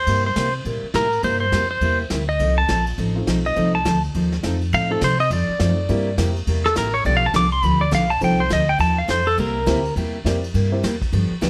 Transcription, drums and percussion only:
0.07 ride medium
0.36 snare medium
0.36 hi-hat pedal medium
0.36 ride medium
0.65 ride medium
0.94 snare medium
0.94 hi-hat pedal medium
0.94 ride medium
1.12 ride soft
1.23 ride medium
1.52 snare medium
1.52 hi-hat pedal medium
1.52 ride medium
1.81 ride medium
2.10 snare medium
2.10 hi-hat pedal medium
2.10 ride medium
2.40 ride medium
2.69 snare medium
2.69 hi-hat pedal medium
2.69 ride medium
2.86 ride medium
2.98 ride medium
3.27 snare medium
3.27 hi-hat pedal medium
3.27 ride medium
3.45 ride medium
3.56 ride medium
3.85 snare medium
3.85 hi-hat pedal medium
3.85 ride medium
4.03 ride soft
4.14 ride medium
4.32 snare soft
4.43 snare medium
4.43 hi-hat pedal medium
4.43 ride medium
4.61 ride soft
4.72 ride medium
5.01 snare medium
5.01 hi-hat pedal medium
5.01 ride medium
5.19 ride medium
5.31 ride medium
5.60 snare medium
5.60 hi-hat pedal medium
5.60 ride medium
5.89 ride medium
6.18 snare medium
6.18 hi-hat pedal medium
6.18 ride medium
6.36 ride medium
6.47 ride medium
6.65 snare soft
6.76 snare medium
6.76 hi-hat pedal medium
6.76 ride medium
6.94 ride medium
7.05 ride medium
7.34 snare medium
7.34 hi-hat pedal medium
7.34 ride medium
7.52 ride medium
7.62 ride medium
7.92 snare medium
7.92 hi-hat pedal medium
7.92 ride medium
8.10 ride medium
8.21 ride medium
8.50 snare medium
8.50 hi-hat pedal medium
8.50 ride medium
8.79 ride medium
9.09 snare medium
9.09 hi-hat pedal medium
9.09 ride medium
9.27 ride medium
9.38 ride medium
9.67 snare medium
9.67 hi-hat pedal medium
9.67 ride medium
9.85 ride medium
9.97 ride medium
10.26 snare medium
10.26 hi-hat pedal medium
10.26 ride medium
10.44 ride medium
10.55 ride medium
10.84 snare medium
10.84 hi-hat pedal medium
10.84 ride medium
11.02 kick medium
11.02 ride medium
11.13 ride medium
11.42 snare medium
11.42 hi-hat pedal medium
11.42 ride medium

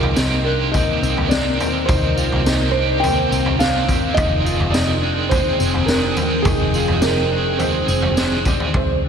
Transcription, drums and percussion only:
0.03 floor tom medium
0.16 snare loud
0.16 tambourine medium
0.74 kick medium
0.74 floor tom medium
0.74 tambourine medium
1.03 tambourine medium
1.17 floor tom medium
1.31 snare loud
1.31 tambourine medium
1.60 floor tom medium
1.60 tambourine medium
1.89 kick loud
1.89 floor tom loud
1.89 tambourine medium
2.18 tambourine medium
2.32 floor tom medium
2.46 snare loud
2.46 tambourine loud
3.04 floor tom medium
3.04 tambourine medium
3.32 tambourine medium
3.46 floor tom medium
3.60 snare loud
3.60 tambourine medium
3.89 kick medium
3.89 floor tom medium
3.89 tambourine medium
4.17 kick loud
4.17 floor tom loud
4.17 tambourine medium
4.46 tambourine medium
4.60 floor tom medium
4.74 snare loud
4.74 tambourine loud
5.31 kick loud
5.31 floor tom medium
5.31 tambourine medium
5.60 tambourine medium
5.74 floor tom medium
5.88 snare loud
5.88 tambourine medium
6.17 floor tom medium
6.17 tambourine medium
6.45 kick loud
6.45 floor tom loud
6.45 tambourine medium
6.74 tambourine medium
6.88 floor tom medium
7.02 snare loud
7.02 tambourine loud
7.60 floor tom medium
7.60 tambourine medium
7.88 tambourine medium
8.02 floor tom medium
8.17 snare loud
8.17 tambourine medium
8.45 kick medium
8.45 floor tom medium
8.45 tambourine medium
8.60 floor tom medium
8.74 kick medium
8.74 floor tom medium

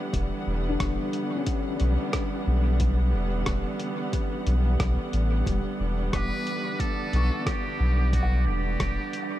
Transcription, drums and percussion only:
0.13 kick loud
0.13 closed hi-hat medium
0.80 kick loud
0.80 cross-stick medium
0.80 closed hi-hat medium
1.13 closed hi-hat soft
1.47 kick loud
1.47 closed hi-hat medium
1.80 closed hi-hat soft
2.13 kick loud
2.13 cross-stick medium
2.13 closed hi-hat medium
2.80 kick loud
2.80 closed hi-hat medium
3.46 kick loud
3.46 cross-stick medium
3.46 closed hi-hat medium
3.80 closed hi-hat soft
4.13 kick loud
4.13 closed hi-hat medium
4.47 closed hi-hat soft
4.80 kick loud
4.80 cross-stick medium
4.80 closed hi-hat soft
5.13 closed hi-hat soft
5.46 kick loud
5.46 closed hi-hat medium
6.13 kick loud
6.13 cross-stick medium
6.13 closed hi-hat soft
6.47 closed hi-hat soft
6.80 kick loud
6.80 closed hi-hat soft
7.13 closed hi-hat soft
7.46 kick loud
7.46 cross-stick medium
7.46 closed hi-hat soft
8.13 kick loud
8.13 closed hi-hat soft
8.80 kick loud
8.80 cross-stick medium
8.80 closed hi-hat medium
9.13 closed hi-hat soft

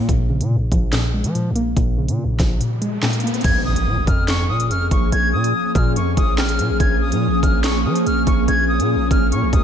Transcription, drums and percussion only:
0.09 kick loud
0.09 closed hi-hat medium
0.41 closed hi-hat medium
0.72 kick loud
0.72 closed hi-hat medium
0.93 snare loud
0.93 clap medium
0.93 closed hi-hat medium
1.24 closed hi-hat medium
1.35 closed hi-hat medium
1.56 closed hi-hat medium
1.77 kick loud
1.77 closed hi-hat medium
2.08 closed hi-hat medium
2.40 kick medium
2.40 snare medium
2.40 closed hi-hat medium
2.61 closed hi-hat medium
2.82 closed hi-hat medium
3.03 snare loud
3.03 clap medium
3.13 closed hi-hat medium
3.20 closed hi-hat medium
3.27 closed hi-hat medium
3.34 closed hi-hat medium
3.41 kick loud
3.41 closed hi-hat soft
3.41 crash loud
3.44 closed hi-hat medium
3.76 closed hi-hat medium
4.07 kick loud
4.07 closed hi-hat medium
4.28 snare loud
4.28 clap medium
4.28 closed hi-hat medium
4.60 closed hi-hat medium
4.71 closed hi-hat medium
4.91 kick medium
4.91 closed hi-hat medium
5.12 closed hi-hat medium
5.44 closed hi-hat medium
5.75 kick loud
5.75 closed hi-hat medium
5.96 closed hi-hat medium
6.17 kick medium
6.17 closed hi-hat medium
6.38 snare loud
6.38 clap medium
6.49 closed hi-hat medium
6.59 closed hi-hat medium
6.80 kick loud
6.80 closed hi-hat medium
7.12 closed hi-hat medium
7.43 kick loud
7.43 closed hi-hat medium
7.64 snare loud
7.64 clap loud
7.64 closed hi-hat medium
7.96 closed hi-hat medium
8.06 closed hi-hat medium
8.27 kick medium
8.27 closed hi-hat medium
8.48 closed hi-hat medium
8.80 closed hi-hat medium
9.11 kick loud
9.11 closed hi-hat medium
9.32 closed hi-hat medium
9.53 kick medium
9.53 closed hi-hat medium

